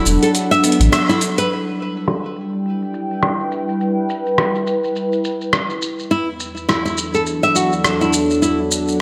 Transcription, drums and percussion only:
0.06 shaker
0.23 closed hi-hat, shaker
0.35 closed hi-hat, shaker
0.52 shaker
0.64 closed hi-hat, shaker
0.72 closed hi-hat
0.81 closed hi-hat, shaker
0.93 cross-stick, closed hi-hat, shaker
1.10 shaker
1.21 closed hi-hat, shaker
1.38 closed hi-hat, shaker
1.50 shaker
1.78 shaker
1.96 shaker
2.08 cross-stick, shaker
2.24 shaker
2.36 shaker
2.53 shaker
2.65 shaker
2.82 shaker
2.94 shaker
3.11 shaker
3.23 cross-stick, shaker
3.40 shaker
3.51 shaker
3.69 shaker
3.81 shaker
4.09 shaker
4.26 shaker
4.38 cross-stick, shaker
4.55 shaker
4.67 shaker
4.84 shaker
4.96 shaker
5.13 shaker
5.24 shaker
5.41 shaker
5.53 cross-stick, shaker
5.70 shaker
5.82 shaker
5.99 shaker
6.11 shaker
6.40 shaker
6.57 shaker
6.69 cross-stick, shaker
6.86 shaker
6.97 shaker
7.14 shaker
7.26 shaker
7.43 shaker
7.55 shaker
7.73 shaker
7.84 cross-stick, shaker
8.01 shaker
8.13 shaker
8.30 shaker
8.42 shaker
8.71 shaker
8.88 shaker

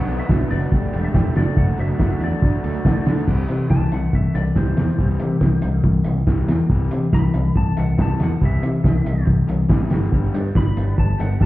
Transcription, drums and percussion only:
0.08 open hi-hat
0.29 kick, snare
0.51 open hi-hat
0.72 kick
0.93 open hi-hat
1.14 kick, snare
1.36 snare, open hi-hat
1.57 kick
1.78 open hi-hat
2.00 kick, snare
2.21 open hi-hat
2.42 kick
2.64 open hi-hat
2.85 kick, snare
3.06 snare, open hi-hat
3.18 snare
3.28 kick, crash
3.49 closed hi-hat
3.70 kick, snare
3.92 closed hi-hat
4.13 kick
4.35 closed hi-hat
4.56 kick, snare
4.77 snare, closed hi-hat
4.88 snare
4.99 kick
5.20 closed hi-hat
5.41 kick, snare
5.62 closed hi-hat
5.84 kick
6.04 closed hi-hat
6.27 kick, snare
6.48 snare, closed hi-hat
6.70 kick
6.91 closed hi-hat
7.13 kick, snare
7.34 closed hi-hat
7.56 kick
7.77 closed hi-hat
7.99 kick, snare
8.20 snare, closed hi-hat
8.42 kick
8.63 closed hi-hat
8.84 kick, snare
9.06 closed hi-hat
9.27 kick
9.49 closed hi-hat
9.70 kick, snare
9.90 snare, closed hi-hat
10.03 snare
10.12 kick
10.35 closed hi-hat
10.55 kick, snare
10.77 closed hi-hat
10.98 kick
11.20 closed hi-hat
11.41 kick, snare

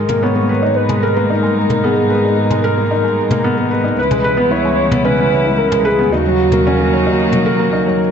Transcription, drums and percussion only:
0.09 mid tom
0.89 mid tom
1.70 mid tom
2.50 mid tom
3.31 mid tom
4.11 mid tom
4.92 mid tom
5.72 mid tom
6.52 mid tom
7.32 mid tom

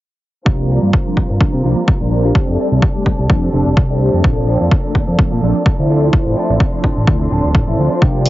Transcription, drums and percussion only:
0.46 kick
0.70 tambourine
0.93 kick
1.17 kick
1.41 kick
1.64 tambourine
1.77 tambourine
1.88 kick
2.12 tambourine
2.24 tambourine
2.35 kick
2.59 tambourine
2.72 tambourine
2.82 kick
3.06 kick
3.30 kick
3.53 tambourine
3.67 tambourine
3.77 kick
4.00 tambourine
4.13 tambourine
4.24 kick
4.48 tambourine
4.61 tambourine
4.71 kick
4.95 kick
5.19 kick
5.41 tambourine
5.55 tambourine
5.66 kick
5.90 tambourine
6.01 tambourine
6.13 kick
6.26 tambourine
6.37 tambourine
6.49 tambourine
6.60 kick
6.73 tambourine
6.84 kick
7.07 kick
7.30 tambourine
7.43 tambourine
7.55 kick
7.78 tambourine
7.90 tambourine
8.02 kick
8.26 open hi-hat

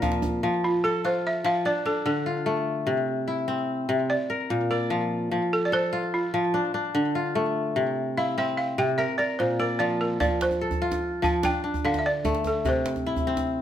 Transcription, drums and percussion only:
0.02 djembe bass
0.12 djembe slap
0.22 djembe slap, djembe tone
10.21 djembe bass
10.41 djembe slap
10.51 djembe tone
10.71 djembe bass
10.92 djembe slap, djembe tone
11.23 djembe bass
11.43 djembe slap, djembe tone
11.74 djembe bass
11.94 djembe slap, djembe tone
12.25 djembe bass
12.35 djembe slap
12.45 djembe tone
12.65 djembe bass
12.86 djembe slap
12.96 djembe tone
13.16 djembe bass
13.37 djembe slap, djembe tone
13.47 djembe slap

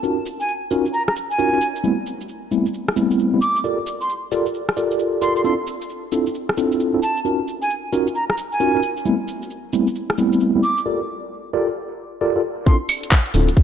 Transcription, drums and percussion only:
0.03 cabasa
0.26 cabasa
0.40 cabasa
0.48 cabasa
0.71 cabasa
0.85 cabasa
0.94 cabasa
1.08 cross-stick
1.16 cabasa
1.31 cabasa
1.39 cabasa
1.61 cabasa
1.76 cabasa
1.84 cabasa
2.06 cabasa
2.21 cabasa
2.29 cabasa
2.51 cabasa
2.66 cabasa
2.74 cabasa
2.88 cross-stick
2.97 cabasa
3.11 cabasa
3.19 cabasa
3.42 cabasa
3.56 cabasa
3.64 cabasa
3.87 cabasa
4.01 cabasa
4.09 cabasa
4.32 cabasa
4.46 cabasa
4.54 cabasa
4.69 cross-stick
4.77 cabasa
4.91 cabasa
4.99 cabasa
5.22 cabasa
5.36 cabasa
5.44 cabasa
5.67 cabasa
5.82 cabasa
5.90 cabasa
6.12 cabasa
6.27 cabasa
6.35 cabasa
6.49 cross-stick
6.57 cabasa
6.72 cabasa
6.80 cabasa
7.03 cabasa
7.17 cabasa
7.25 cabasa
7.48 cabasa
7.62 cabasa
7.70 cabasa
7.93 cabasa
8.07 cabasa
8.15 cabasa
8.30 cross-stick
8.38 cabasa
8.52 cabasa
8.60 cabasa
8.83 cabasa
8.97 cabasa
9.05 cabasa
9.28 cabasa
9.42 cabasa
9.50 cabasa
9.73 cabasa
9.87 cabasa
9.95 cabasa
10.10 cross-stick
10.18 cabasa
10.33 cabasa
10.41 cabasa
10.63 cabasa
10.78 cabasa
12.66 kick, cabasa
12.89 open hi-hat, cabasa, claves
13.03 closed hi-hat, cabasa
13.11 kick, clap, cabasa
13.26 closed hi-hat
13.34 open hi-hat, cabasa
13.48 closed hi-hat, cabasa
13.56 kick, cabasa

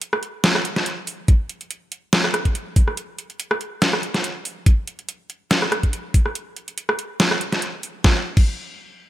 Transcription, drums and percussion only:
0.02 closed hi-hat
0.13 cross-stick
0.23 closed hi-hat
0.44 snare, closed hi-hat
0.55 cross-stick
0.65 closed hi-hat
0.76 snare, closed hi-hat
0.86 closed hi-hat
1.07 open hi-hat
1.28 kick, closed hi-hat
1.49 closed hi-hat
1.61 closed hi-hat
1.71 closed hi-hat
1.92 closed hi-hat
2.13 snare, closed hi-hat
2.24 cross-stick
2.34 cross-stick, closed hi-hat
2.45 kick, closed hi-hat
2.55 closed hi-hat
2.76 kick, open hi-hat
2.88 cross-stick
2.97 closed hi-hat
3.18 closed hi-hat
3.30 closed hi-hat
3.40 closed hi-hat
3.51 cross-stick
3.61 closed hi-hat
3.82 snare, closed hi-hat
3.93 cross-stick
4.03 closed hi-hat
4.14 snare, closed hi-hat
4.24 closed hi-hat
4.45 open hi-hat
4.66 kick, closed hi-hat
4.87 closed hi-hat
4.99 closed hi-hat
5.09 closed hi-hat
5.30 closed hi-hat
5.51 snare, closed hi-hat
5.62 cross-stick
5.72 cross-stick, closed hi-hat
5.83 kick, closed hi-hat
5.93 closed hi-hat
6.14 kick, open hi-hat
6.26 cross-stick
6.35 closed hi-hat
6.56 closed hi-hat
6.68 closed hi-hat
6.78 closed hi-hat
6.89 cross-stick
6.99 closed hi-hat
7.20 snare, closed hi-hat
7.31 cross-stick
7.41 closed hi-hat
7.52 snare, closed hi-hat
7.62 closed hi-hat
7.83 open hi-hat
8.04 kick, snare
8.37 kick, crash

